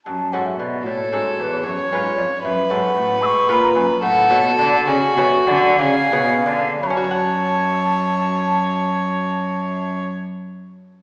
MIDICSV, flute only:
0, 0, Header, 1, 2, 480
1, 0, Start_track
1, 0, Key_signature, 3, "minor"
1, 0, Tempo, 527241
1, 52, Time_signature, 6, 3, 24, 8
1, 3411, Tempo, 562324
1, 4371, Tempo, 601202
1, 4851, Tempo, 650759
1, 5331, Tempo, 708383
1, 8650, End_track
2, 0, Start_track
2, 0, Title_t, "Flute"
2, 0, Program_c, 0, 73
2, 47, Note_on_c, 0, 81, 65
2, 296, Note_on_c, 0, 78, 66
2, 310, Note_off_c, 0, 81, 0
2, 419, Note_on_c, 0, 76, 54
2, 433, Note_off_c, 0, 78, 0
2, 534, Note_on_c, 0, 74, 60
2, 548, Note_off_c, 0, 76, 0
2, 770, Note_off_c, 0, 74, 0
2, 776, Note_on_c, 0, 73, 70
2, 1250, Note_off_c, 0, 73, 0
2, 1250, Note_on_c, 0, 73, 61
2, 1287, Note_on_c, 0, 71, 67
2, 1296, Note_off_c, 0, 73, 0
2, 1494, Note_on_c, 0, 73, 64
2, 1508, Note_off_c, 0, 71, 0
2, 1965, Note_off_c, 0, 73, 0
2, 1970, Note_on_c, 0, 74, 60
2, 2025, Note_off_c, 0, 74, 0
2, 2217, Note_on_c, 0, 76, 71
2, 2458, Note_on_c, 0, 78, 77
2, 2472, Note_off_c, 0, 76, 0
2, 2932, Note_on_c, 0, 88, 88
2, 2945, Note_off_c, 0, 78, 0
2, 2965, Note_on_c, 0, 85, 96
2, 2974, Note_off_c, 0, 88, 0
2, 3176, Note_on_c, 0, 83, 80
2, 3189, Note_off_c, 0, 85, 0
2, 3291, Note_off_c, 0, 83, 0
2, 3296, Note_on_c, 0, 82, 77
2, 3413, Note_off_c, 0, 82, 0
2, 3420, Note_on_c, 0, 80, 79
2, 3471, Note_off_c, 0, 80, 0
2, 3647, Note_on_c, 0, 78, 100
2, 4117, Note_off_c, 0, 78, 0
2, 4121, Note_on_c, 0, 81, 106
2, 4177, Note_off_c, 0, 81, 0
2, 4365, Note_on_c, 0, 80, 106
2, 4852, Note_on_c, 0, 78, 95
2, 4863, Note_off_c, 0, 80, 0
2, 5082, Note_on_c, 0, 77, 112
2, 5093, Note_off_c, 0, 78, 0
2, 5798, Note_off_c, 0, 77, 0
2, 5802, Note_on_c, 0, 83, 88
2, 5834, Note_on_c, 0, 81, 95
2, 5841, Note_off_c, 0, 83, 0
2, 7949, Note_off_c, 0, 81, 0
2, 8650, End_track
0, 0, End_of_file